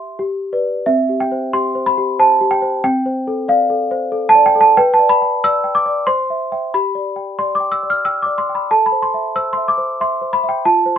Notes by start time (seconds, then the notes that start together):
Already playing: G4 E5 C6
0.19 G4
0.53 B4 D5
0.86 C4 E5
1.09 G4
1.20 G5
1.32 C5
1.53 G4 C6
1.75 C5
1.86 B5
1.98 G4
2.19 C5 A5
2.41 G4
2.51 G5
2.62 C5
2.84 C4 G5
3.06 C5
3.27 A4
3.48 D5 F5
3.70 A4
3.91 C5
4.12 A4
4.29 A5
4.35 D5
4.46 G5
4.55 A4
4.61 A5
4.77 B4 G5
4.94 A5
4.99 D5
5.09 B5
5.22 G5
5.44 D5 E6
5.64 G5
5.75 D6
5.86 D5
6.07 C5 C6
6.30 E5
6.52 E5 G5
6.74 G4 B5
6.95 D5
7.16 G5
7.39 D5 C6
7.55 D6
7.60 G5
7.72 E6
7.83 D5
7.90 F6
8.05 G5 E6
8.22 D5 D6
8.38 C6
8.49 G5
8.55 B5
8.71 A4 A5
8.86 B5
8.92 C5
9.02 C6
9.14 E5
9.36 C5 E6
9.53 C6
9.57 E5
9.68 D6
9.78 C5
10.01 E5 C6
10.22 C5
10.33 B5
10.44 E5
10.49 G5
10.65 F4 A5
10.86 C5